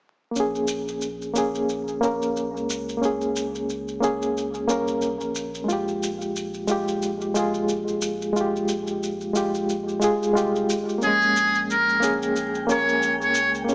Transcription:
0.31 A#3
0.36 A#1 C#4, maracas
0.40 G#4
0.55 maracas
0.68 maracas
0.88 maracas
1.01 maracas
1.22 maracas
1.34 A#3 C#4, maracas
1.38 G#4
1.55 maracas
1.69 maracas
1.88 maracas
2.01 A#3 C#4, maracas
2.05 A#4
2.22 maracas
2.36 maracas
2.55 C#2, maracas
2.70 maracas
2.89 maracas
2.97 A#3
3.02 C#4 G#4, maracas
3.21 maracas
3.36 maracas
3.55 maracas
3.70 maracas
3.88 maracas
4.00 A#3 C#4 G#4, maracas
4.22 maracas
4.38 maracas
4.54 maracas
4.67 C2 A#3 C#4, maracas
4.71 A#4
4.88 maracas
5.02 maracas
5.21 A#1, maracas
5.35 maracas
5.55 maracas
5.64 G#3
5.68 A#1 F4, maracas
5.73 G4
5.88 maracas
6.03 maracas
6.21 maracas
6.36 maracas
6.54 maracas
6.67 G#3 F4, maracas
6.71 G4
6.88 maracas
7.03 maracas
7.21 maracas
7.34 G#3 F4, maracas
7.39 G#4
7.54 maracas
7.69 maracas
7.87 A#1, maracas
8.02 maracas
8.22 maracas
8.33 G#3 F4, maracas
8.41 G4
8.56 maracas
8.69 maracas
8.87 maracas
9.03 maracas
9.21 maracas
9.33 G#3 F4 G4, maracas
9.55 maracas
9.70 maracas
9.89 maracas
10.00 G#3 F4, maracas
10.04 G#4
10.23 maracas
10.33 C2 G#3 F4, maracas
10.37 G4
10.56 maracas
10.69 G#1, maracas
10.89 maracas
10.98 A#1 G#3 A#3 C#4 G5, maracas
11.04 G#3 G#4
11.22 maracas
11.36 maracas
11.55 maracas
11.70 A#4, maracas
11.89 maracas
12.00 A#3 C#4 G#4, maracas
12.22 maracas
12.36 maracas
12.55 maracas
12.67 A#3 C#4 C#5, maracas
12.72 A#4
12.89 maracas
13.02 maracas
13.21 C#2 C#5, maracas
13.35 maracas
13.55 maracas
13.64 A#3
13.69 C#4, maracas

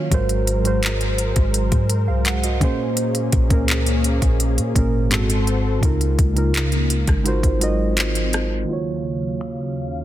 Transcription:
Already playing: D#3 F#3 A#3 F4 F#4 C#5
0.10 G#1 G#2 G#3 F#4 A#4 C5, kick, closed hi-hat
0.14 C5
0.29 closed hi-hat
0.47 closed hi-hat
0.63 G#2 G#3 F#4 A#4, closed hi-hat
0.67 C5
0.83 clap, closed hi-hat
1.01 closed hi-hat
1.18 closed hi-hat
1.36 G#1, kick, closed hi-hat
1.54 closed hi-hat
1.72 G#2, kick, closed hi-hat
1.90 closed hi-hat
2.08 C2 G#4 F5
2.25 A#4 F#5, clap, closed hi-hat
2.44 F#4 D#5, closed hi-hat
2.59 A#2 A#3 C#4 G#4, kick, closed hi-hat
2.64 C5
2.97 closed hi-hat
3.15 closed hi-hat
3.32 A#1, kick, closed hi-hat
3.49 C#2 A#2 A#3 C#4 G#4, kick, closed hi-hat
3.53 A#4
3.68 clap, closed hi-hat
3.86 closed hi-hat
4.04 closed hi-hat
4.22 A#1, kick, closed hi-hat
4.40 closed hi-hat
4.58 A#2, closed hi-hat
4.74 G#1 A#2 A#3 C#4 G#4, kick, closed hi-hat
4.78 A#4
5.09 G#2 G#3 C4 F#4 A4 C5, clap, closed hi-hat
5.13 A4
5.30 closed hi-hat
5.47 closed hi-hat
5.80 C#2 C#3 G#3 A#3 D#4 F4, kick, closed hi-hat
5.85 A#4
6.01 closed hi-hat
6.19 C#2, kick, closed hi-hat
6.34 C#3 G#3 D#4 F4, closed hi-hat
6.38 A#4
6.54 clap, closed hi-hat
6.72 closed hi-hat
6.90 closed hi-hat
7.07 G#1, kick, cross-stick, closed hi-hat
7.23 F#3 G#3 C4 D#4 F4 F#4 A#4, closed hi-hat
7.28 C5
7.43 G#1, kick, closed hi-hat
7.59 G#3 D#4 F4 F#4 A#4, closed hi-hat
7.63 D#5
7.97 clap, closed hi-hat
8.15 closed hi-hat
8.33 cross-stick, closed hi-hat
8.64 D#3 A#3
8.68 D#2 C#3 F#3 F4 F#4 F5
8.73 C#5
9.41 finger snap

